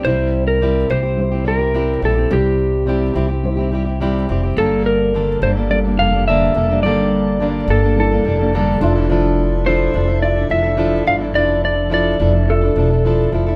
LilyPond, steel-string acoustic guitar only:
\new Staff \with { instrumentName = "Steel-string acoustic guitar" } { \time 4/4 \key g \dorian \tempo 4 = 106 <c g c' e' g'>4 <c g c' e' g'>8 <g c' e' g'>16 <c' e' g'>8 <c' e' g'>16 <g c' e' g'>16 <c' e' g'>16 <c g c' e' g'>8 <g c' e' g'>16 <c' e' g'>16 | <c g c' e' g'>4 <c g c' e' g'>8 <g c' e' g'>16 <c' e' g'>8 <c' e' g'>16 <g c' e' g'>16 <c' e' g'>16 <c g c' e' g'>8 <g c' e' g'>16 <c' e' g'>16 | <g, d g bes d' a'>4 <g, d g bes d' a'>8 <g bes d' a'>16 <g bes d' a'>8 <g bes d' a'>16 <g bes d' a'>16 <g bes d' a'>16 <g, d g bes d' a'>8 <g bes d' a'>16 <g bes d' a'>16 | <g, d g bes d' a'>4 <g, d g bes d' a'>8 <g bes d' a'>16 <g bes d' a'>8 <g bes d' a'>16 <g bes d' a'>16 <g bes d' a'>16 <g, d g bes d' a'>8 <f d' e' a'>16 <d' e' a'>16 |
<f d' e' a'>4 <f d' e' a'>8 <f d' e' a'>16 <d' e' a'>8 <d' e' a'>16 <f d' e' a'>16 <d' e' a'>16 <f d' e' a'>8 <f d' e' a'>16 <d' e' a'>16 | <f d' e' a'>4 <f d' e' a'>8 <f d' e' a'>16 <d' e' a'>8 <d' e' a'>16 <f d' e' a'>16 <d' e' a'>16 <f d' e' a'>8 <f d' e' a'>16 <d' e' a'>16 | }